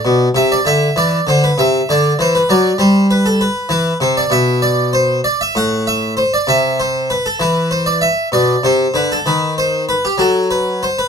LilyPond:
<<
  \new Staff \with { instrumentName = "Harpsichord" } { \time 12/8 \key g \major \tempo 4. = 65 d''8 e''16 d''16 e''8 d''8 c''16 b'16 e''8 d''8 c''16 b'16 d''8 c''8 b'16 a'16 b'8 | \key a \dorian b'8 c''16 d''16 e''8 d''8 c''8 d''16 e''16 fis''8 e''8 c''16 d''16 e''8 c''8 b'16 a'16 | b'8 c''16 d''16 e''8 d''8 c''8 b'16 a'16 b'8 c''8 b'16 g'16 a'8 b'8 c''16 b'16 | }
  \new Staff \with { instrumentName = "Harpsichord" } { \clef bass \time 12/8 \key g \major b,8 c8 d8 e8 d8 c8 d8 e8 fis8 g4. | \key a \dorian e8 c8 b,2 a,4. c4. | e4. b,8 c8 d8 dis4. fis4. | }
>>